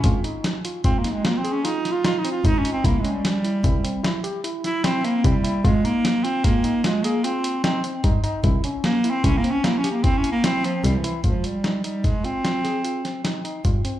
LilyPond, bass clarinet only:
\new Staff \with { instrumentName = "Bass clarinet" } { \time 7/4 \key aes \major \tempo 4 = 150 des'8 r4. \tuplet 3/2 { c'8 bes8 aes8 bes8 c'8 des'8 ees'4 f'8 f'8 ees'8 f'8 ees'8 des'8 c'8 } | \tuplet 3/2 { bes8 aes8 g8~ } g2 r4. e'8 c'8 bes8 g4 | aes8 bes4 c'8 bes4 aes8 bes8 c'4 c'8 r4. | r4 \tuplet 3/2 { bes4 c'8 des'8 bes8 des'8 bes8 des'8 bes8 c'8 des'8 bes8 } c'8 f8 \tuplet 3/2 { g8 e8. r16 } |
f8 g4 g8 aes8 c'2. r4. | }